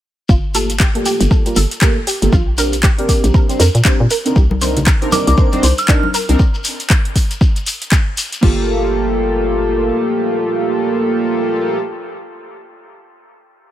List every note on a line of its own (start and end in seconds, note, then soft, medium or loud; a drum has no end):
0.29 0.87 G1 loud
0.29 0.36 F4 medium
0.29 kick loud
0.29 shekere soft
0.54 0.71 A#3 medium
0.54 0.71 F4 medium
0.54 0.72 G4 medium
0.54 0.65 A4 medium
0.54 0.72 A4 medium
0.54 open hi-hat loud
0.54 shekere medium
0.70 closed hi-hat medium
0.70 shekere soft
0.80 0.86 G4 loud
0.80 kick loud
0.80 clap loud
0.80 shekere medium
0.95 1.42 A#3 medium
0.95 1.42 F4 medium
0.95 1.43 G4 medium
0.95 1.43 A4 loud
0.95 closed hi-hat soft
1.05 1.12 G4 medium
1.05 open hi-hat loud
1.05 shekere medium
1.20 1.27 G1 medium
1.20 closed hi-hat medium
1.20 shekere soft
1.31 1.41 A4 medium
1.31 kick loud
1.31 shekere soft
1.46 1.59 A#3 medium
1.46 1.59 F4 medium
1.46 1.59 G4 medium
1.46 1.59 A#4 loud
1.46 closed hi-hat medium
1.46 shekere soft
1.56 1.66 G1 medium
1.56 1.67 A4 medium
1.56 open hi-hat loud
1.56 shekere medium
1.71 closed hi-hat medium
1.71 shekere soft
1.81 1.98 A#3 medium
1.81 1.99 F4 medium
1.81 1.99 G4 medium
1.81 1.99 A4 medium
1.81 1.92 A#4 medium
1.81 kick loud
1.81 clap loud
1.81 shekere medium
2.07 2.13 G4 medium
2.07 open hi-hat loud
2.07 shekere loud
2.22 2.29 G1 medium
2.22 2.31 A#3 medium
2.22 2.31 F4 medium
2.22 2.31 G4 medium
2.22 2.32 A4 medium
2.22 closed hi-hat medium
2.22 shekere soft
2.33 2.90 A#1 loud
2.33 2.39 F4 medium
2.33 kick loud
2.33 shekere soft
2.57 2.75 C4 medium
2.57 2.75 D4 medium
2.57 2.75 G4 medium
2.57 2.69 A#4 medium
2.57 2.75 A#4 medium
2.57 open hi-hat loud
2.57 shekere loud
2.72 closed hi-hat medium
2.72 shekere soft
2.83 2.90 G4 loud
2.83 kick loud
2.83 clap loud
2.83 shekere medium
2.98 3.46 C4 medium
2.98 3.46 D4 medium
2.98 3.46 G4 medium
2.98 3.46 A#4 loud
2.98 closed hi-hat soft
3.09 3.15 G4 medium
3.09 kick medium
3.09 open hi-hat loud
3.09 shekere medium
3.24 3.31 A#1 loud
3.24 closed hi-hat medium
3.24 shekere soft
3.34 3.45 A#4 medium
3.34 kick loud
3.34 shekere soft
3.49 3.62 C4 medium
3.49 3.62 D4 medium
3.49 3.62 G4 medium
3.49 3.63 C5 loud
3.49 closed hi-hat soft
3.49 shekere soft
3.60 3.70 F2 loud
3.60 3.70 A#4 medium
3.60 open hi-hat loud
3.60 shekere loud
3.75 3.82 A#2 medium
3.75 closed hi-hat medium
3.75 shekere soft
3.85 4.02 C4 medium
3.85 4.02 D4 medium
3.85 4.02 G4 medium
3.85 4.02 A#4 medium
3.85 3.96 C5 medium
3.85 kick loud
3.85 clap loud
3.85 shekere soft
4.00 4.07 A#2 medium
4.10 4.17 A#4 medium
4.10 open hi-hat loud
4.10 shekere medium
4.25 4.38 C4 medium
4.25 4.39 D4 medium
4.25 4.39 D#4 medium
4.25 4.39 A#4 medium
4.25 closed hi-hat medium
4.25 shekere soft
4.36 4.93 C2 loud
4.36 4.42 G4 medium
4.36 kick loud
4.36 shekere soft
4.51 high conga medium
4.61 4.78 C4 medium
4.61 4.78 D4 medium
4.61 4.79 D#4 medium
4.61 4.79 A#4 medium
4.61 4.72 C5 medium
4.61 open hi-hat loud
4.61 shekere loud
4.77 closed hi-hat medium
4.77 low conga medium
4.77 shekere soft
4.86 4.93 A#4 loud
4.86 kick loud
4.86 clap loud
4.86 shekere medium
5.02 5.49 C4 medium
5.02 5.49 D4 medium
5.02 5.49 D#4 medium
5.02 5.49 A#4 loud
5.02 closed hi-hat soft
5.12 5.19 A#4 medium
5.12 5.22 D6 medium
5.12 open hi-hat loud
5.12 high conga loud
5.12 shekere loud
5.27 5.34 C2 loud
5.27 5.34 D6 medium
5.27 closed hi-hat medium
5.27 shekere soft
5.37 5.48 C5 medium
5.37 kick loud
5.37 shekere medium
5.52 5.65 C4 medium
5.52 5.66 D4 medium
5.52 5.66 D#4 medium
5.52 5.66 C5 loud
5.52 closed hi-hat soft
5.52 high conga medium
5.52 shekere soft
5.63 5.73 C2 medium
5.63 5.74 C5 medium
5.63 open hi-hat loud
5.63 shekere medium
5.78 5.99 F6 medium
5.78 closed hi-hat medium
5.78 shekere soft
5.88 6.05 C4 medium
5.88 6.05 D4 medium
5.88 6.06 D#4 medium
5.88 6.06 A#4 medium
5.88 5.99 D5 medium
5.88 kick loud
5.88 clap loud
5.88 shekere soft
6.03 high conga medium
6.14 6.20 A#4 medium
6.14 open hi-hat loud
6.14 shekere loud
6.29 6.36 C2 medium
6.29 6.38 C4 medium
6.29 6.38 D4 medium
6.29 6.38 D#4 medium
6.29 6.38 A#4 medium
6.29 closed hi-hat medium
6.29 shekere soft
6.39 kick loud
6.39 shekere soft
6.54 shekere soft
6.64 open hi-hat loud
6.64 shekere loud
6.80 closed hi-hat medium
6.80 shekere soft
6.90 kick loud
6.90 clap loud
6.90 shekere soft
7.05 closed hi-hat soft
7.16 kick medium
7.16 open hi-hat loud
7.16 shekere medium
7.31 closed hi-hat medium
7.31 shekere soft
7.41 kick loud
7.41 shekere medium
7.56 closed hi-hat soft
7.56 shekere soft
7.67 open hi-hat loud
7.67 shekere loud
7.82 closed hi-hat medium
7.82 shekere soft
7.92 kick loud
7.92 clap loud
7.92 shekere medium
8.17 open hi-hat loud
8.17 shekere medium
8.32 closed hi-hat medium
8.32 shekere soft
8.41 9.91 G1 loud
8.41 11.77 A#3 medium
8.41 11.78 F4 medium
8.41 8.66 F4 medium
8.41 11.79 G4 medium
8.41 11.80 A4 medium
8.41 kick loud
8.41 crash medium